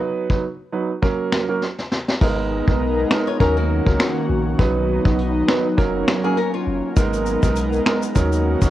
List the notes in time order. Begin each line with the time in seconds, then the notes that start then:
Already playing: F#3 B3 D#4 B4
0.30 F#3 B3 D#4 B4, kick
0.72 F#3 B3 D#4 B4
1.02 F#3 A#3 C#4 A#4, kick
1.32 finger snap, snare
1.48 F#3 A#3 C#4 A#4
1.62 snare
1.79 snare
1.92 snare
2.08 snare
2.21 G#1 G#3 B3 D#4 A#4, kick, crash
2.67 B1 G#3 B3 D#4 A#4, kick
3.10 G#3 B3 D#4 A#4, finger snap, snare
3.27 F4 C#5
3.40 D#2 D#3 F#3 A#3 C#4 D#4 F#4 A#4, kick
3.57 A#3 F#4
3.86 C#2 F#3 C#4 D#4 A#4, kick
3.99 finger snap, snare
4.29 A#1
4.58 B1 F#3 B3 D#4 B4, kick, closed hi-hat
5.05 B1 F#3 B3 D#4 B4, kick
5.19 closed hi-hat
5.48 F#3 B3 D#4 B4, finger snap, snare
5.77 F#1 F#3 A#3 C#4 A#4, kick, closed hi-hat
6.07 finger snap, snare
6.24 F#3 A#3 C#4 G#4 A#4
6.37 C#4 A#4, closed hi-hat
6.54 F4 C#5
6.67 F#1
6.96 G#1 G#3 B3 D#4 A#4, kick, closed hi-hat, shaker
7.13 shaker
7.26 shaker
7.43 B1 G#3 B3 D#4 A#4, kick, shaker
7.56 closed hi-hat, shaker
7.73 shaker
7.85 G#3 B3 D#4 A#4, finger snap, snare
8.02 shaker
8.15 D#2 D#3 F#3 A#3 C#4 D#4 F#4 A#4, kick, closed hi-hat, shaker
8.32 shaker
8.61 C#2 F#3 C#4 D#4 A#4, kick, shaker